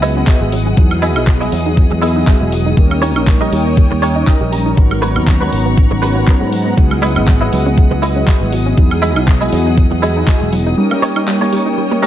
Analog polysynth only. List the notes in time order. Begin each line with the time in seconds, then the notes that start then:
Already playing: F#3 B3 E4 G#4 D#5
0.77 F#3 B3 D#4 E4 G#4
1.15 F#3 B3 E4 G#4 D#5
2.77 G3 A#3 C#4 D#4 A#4
3.15 G3 A#3 C#4 D#4 A#4
4.77 F#3 B3 C#4 D#4 A#4
5.15 F#3 B3 C#4 D#4 A#5
6.77 F#3 B3 D#4 E4 G#4
7.15 F#3 B3 E4 G#4 D#5
8.77 F#3 B3 D#4 E4 G#4
9.15 F#3 B3 E4 G#4 D#5
10.77 G3 A#3 C#4 D#4 A#4
11.15 G3 A#3 C#4 D#4 A#4